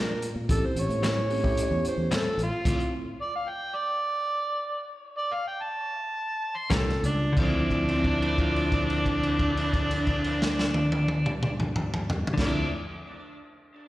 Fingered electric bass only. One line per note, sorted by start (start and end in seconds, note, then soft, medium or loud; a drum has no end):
0.00 0.28 A#2 medium
0.36 0.47 A#2 loud
0.49 0.61 A1 medium
0.76 0.88 A1 medium
0.89 1.59 A2 loud
1.71 1.82 E2 loud
1.84 muted fingered electric bass stroke soft
1.98 2.09 E2 loud
2.25 muted fingered electric bass stroke soft
2.38 2.50 A1 medium
2.66 2.78 D2 loud
2.79 muted fingered electric bass stroke soft
6.71 7.00 C2 medium
7.04 7.34 C#2 medium
7.37 12.26 D2 medium
12.38 12.66 D2 loud